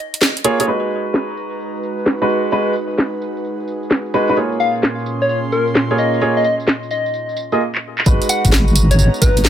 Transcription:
0.14 closed hi-hat
0.22 snare
0.37 closed hi-hat
0.44 A#3 F4 G#4 C#5, closed hi-hat
0.60 A#3 F4 G#4 C#5, closed hi-hat
0.68 G#3 D#4 F#4 B4 A#5
0.83 tambourine
0.91 tambourine
1.06 tambourine
1.14 snare, tambourine
1.29 tambourine
1.37 tambourine
1.53 tambourine
1.60 tambourine
1.76 tambourine
1.83 tambourine
1.99 tambourine
2.06 snare, tambourine
2.22 G#3 D#4 F#4 B4, tambourine
2.29 tambourine
2.45 tambourine
2.52 G#3 D#4 F#4 G#4 B4, tambourine
2.68 tambourine
2.75 tambourine
2.91 tambourine
2.98 snare, tambourine
3.14 tambourine
3.22 tambourine
3.37 tambourine
3.45 tambourine
3.60 tambourine
3.68 tambourine
3.83 tambourine
3.91 snare, tambourine
4.06 tambourine
4.14 G#3 D#4 F#4 B4, tambourine
4.29 G#3 D#4 F#4 B4, tambourine
4.37 A#2 A#3 C#4 F4 G#4 C#5 C6, tambourine
4.52 tambourine
4.60 F5, tambourine
4.75 tambourine
4.83 snare, tambourine
4.99 tambourine
5.06 tambourine
5.21 C#5, tambourine
5.29 C#5, tambourine
5.45 tambourine
5.52 A#4, tambourine
5.68 tambourine
5.75 snare, tambourine
5.91 A#3 F4 G#4 C#5, tambourine
5.98 D#5, tambourine
6.14 tambourine
6.21 A#3 F4 G#4 C#5, tambourine
6.37 D#5, tambourine
6.44 D#5, tambourine
6.60 tambourine
6.68 snare, tambourine
6.83 tambourine
6.91 D#5, tambourine
7.06 tambourine
7.14 tambourine
7.29 tambourine
7.37 tambourine
7.52 A#3 F4 G#4 D#5, tambourine
7.75 clap
7.98 clap
8.06 G#1 G#3 B3 D#4 F#4 B4 A#5, kick, tambourine
8.22 closed hi-hat, tambourine
8.29 F#5, closed hi-hat, tambourine
8.45 G#1, kick, closed hi-hat, tambourine
8.52 snare, tambourine
8.68 tambourine
8.76 closed hi-hat, tambourine
8.91 C#5, closed hi-hat, tambourine
8.99 C#5, tambourine
9.14 tambourine
9.22 G#1 B4, kick, closed hi-hat, tambourine
9.37 closed hi-hat, tambourine
9.45 snare, tambourine

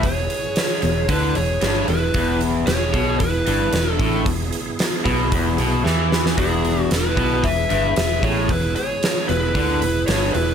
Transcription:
Already playing: E4 G#4 B4
0.03 E1 E2 G#4 C#5, kick, open hi-hat
0.30 open hi-hat
0.56 snare, open hi-hat
0.82 E1 E2, open hi-hat
1.09 D2 D3 E4 B4, kick, open hi-hat
1.35 E1 E2 G#4 C#5, open hi-hat
1.61 G1 G2, snare, open hi-hat
1.88 E1 E2 E4 B4, open hi-hat
2.14 E1 E2 B3 E4 G#4, kick, open hi-hat
2.41 open hi-hat
2.67 E1 E2 G#4 C#5, snare, open hi-hat
2.94 B1 B2, kick, open hi-hat
3.20 E1 E2 E4 B4, kick, open hi-hat
3.47 G1 G2, open hi-hat
3.73 E1 E2, snare, open hi-hat
3.91 D4 A4
3.99 A1 A2, kick, open hi-hat
4.26 E1 E2, kick, open hi-hat
4.53 open hi-hat
4.79 snare, open hi-hat
5.05 B1 B2, kick, open hi-hat
5.32 E1 E2, kick, open hi-hat
5.58 B1 B2, open hi-hat
5.85 E2 E3, snare
6.12 snare
6.26 snare
6.37 E1 E2 G#3 B3 E4 G#4, kick, open hi-hat
6.65 open hi-hat
6.82 F#4
6.91 E1 E2 E4 B4, snare, open hi-hat
7.17 B1 B2, kick, open hi-hat
7.44 E1 E2 B4 E5, kick, open hi-hat
7.70 G1 G2, open hi-hat
7.96 E1 E2 B4 E5, snare, open hi-hat
8.23 A1 A2 G#4 C#5, kick, open hi-hat
8.49 E1 E2 E4 B4, kick, open hi-hat
8.76 G#4 C#5, open hi-hat
9.03 snare, open hi-hat
9.29 E1 E2 E4 B4, open hi-hat
9.55 D2 D3, kick, open hi-hat
9.82 E1 E2, open hi-hat
10.07 G1 G2 G#4 C#5, snare, open hi-hat
10.33 E1 E2 E4 B4, open hi-hat

